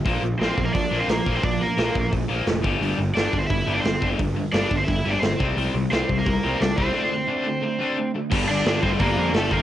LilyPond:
<<
  \new Staff \with { instrumentName = "Overdriven electric guitar" } { \time 4/4 \key g \dorian \tempo 4 = 174 r4 <c' c''>8. <bes bes'>16 <d' d''>8. <c' c''>16 <bes bes'>8. <c' c''>16 | <d' d''>8 <bes bes'>4. r2 | r4 <d' d''>8. <c' c''>16 <e' e''>8. <d' d''>16 <c' c''>8. r16 | r4 <d' d''>8. <c' c''>16 <e' e''>8. <d' d''>16 <c' c''>8. r16 |
r4 <c' c''>8. <bes bes'>4~ <bes bes'>16 <d' d''>8 <c' c''>8~ | <c' c''>2.~ <c' c''>8 r8 | \key g \minor r8 <d' d''>4 <c' c''>8 <bes bes'>4 <a a'>8 <bes bes'>8 | }
  \new Staff \with { instrumentName = "Overdriven electric guitar" } { \clef bass \time 4/4 \key g \dorian <bes, f bes>8 <bes, f>8 <bes, f bes>8 <bes, f>8 <bes, f>8 <bes, f bes>8 <bes, f>8 <bes, f bes>8 | <bes, f>8 <bes, f>8 <bes, f bes>8 <bes, f>8 <bes, f>8 <bes, f bes>8 <bes, f>8 <g, d g>8 | <g, d g>8 <g, d>8 <g, d g>8 <g, d>8 <g, d>8 <g, d g>8 <g, d>8 <g, d g>8 | <g, d>8 <g, d>8 <g, d g>8 <g, d>8 <g, d>8 <g, d g>8 <g, d>8 <c g c'>8 |
<c g c'>8 <c g>8 <c g c'>8 <c g>8 <c g>8 <c g c'>8 <c g>8 <c g c'>8 | <d a d'>8 <d a>8 <d a d'>8 <d a>8 <d a>8 <d a d'>8 <d a>8 <d a>8 | \key g \minor <g, d g>4 <g, d g>8 <g, d g>8 <g, d g>4 <g, d g>8 <g, d g>8 | }
  \new Staff \with { instrumentName = "Overdriven electric guitar" } { \clef bass \time 4/4 \key g \dorian <bes, f bes>8 <bes, f>8 <bes, f bes>8 <bes, f>8 <bes, f>8 <bes, f bes>8 <bes, f>8 <bes, f bes>8 | <bes, f>8 <bes, f>8 <bes, f bes>8 <bes, f>8 <bes, f>8 <bes, f bes>8 <bes, f>8 <g, d g>8 | <g, d g>8 <g, d>8 <g, d g>8 <g, d>8 <g, d>8 <g, d g>8 <g, d>8 <g, d g>8 | <g, d>8 <g, d>8 <g, d g>8 <g, d>8 <g, d>8 <g, d g>8 <g, d>8 <c g c'>8 |
<c g c'>8 <c g>8 <c g c'>8 <c g>8 <c g>8 <c g c'>8 <c g>8 <c g c'>8 | <d a d'>8 <d a>8 <d a d'>8 <d a>8 <d a>8 <d a d'>8 <d a>8 <d a>8 | \key g \minor <g, d g>4 <g, d g>8 <g, d g>8 <g, d g>4 <g, d g>8 <g, d g>8 | }
  \new Staff \with { instrumentName = "Overdriven electric guitar" } { \clef bass \time 4/4 \key g \dorian r1 | r1 | r1 | r1 |
r1 | r1 | \key g \minor <g, d g>4. <g, d g>2~ <g, d g>8 | }
  \new Staff \with { instrumentName = "Picked electric bass" } { \clef bass \time 4/4 \key g \dorian bes,,8 bes,,8 bes,,8 bes,,8 bes,,8 bes,,8 bes,,8 bes,,8 | bes,,4 bes,,8 bes,,8 bes,,8 bes,,8 f,,8 g,,8 | g,,8 g,,8 g,,8 g,,8 g,,8 g,,8 g,,8 g,,8 | g,,4 g,,8 g,,8 g,,8 g,,8 g,,8 c,8 |
c,8 c,8 c,8 c,8 c,8 c,8 c,8 c,8 | r1 | \key g \minor g,,8 g,,8 g,,8 g,,8 g,,8 f,8 g,,8 g,,8 | }
  \new DrumStaff \with { instrumentName = "Drums" } \drummode { \time 4/4 <hho bd>4 <hho sn>8 bd8 <hho bd>4 <hho sn>8 bd8 | <hho bd>4 <hho sn>8 bd8 <hho bd>4 <hho sn>8 bd8 | hho4 <hho sn>8 bd8 <hho bd>4 <hho sn>8 bd8 | <hho bd>4 <hho sn>8 bd8 <hho bd>4 <hho sn>8 bd8 |
hho4 <hho sn>8 bd8 <hho bd>4 <hho sn>8 bd8 | r4 r4 r4 r4 | <cymc bd>4 <hho sn>8 bd8 <hho bd>4 <hho sn>8 bd8 | }
>>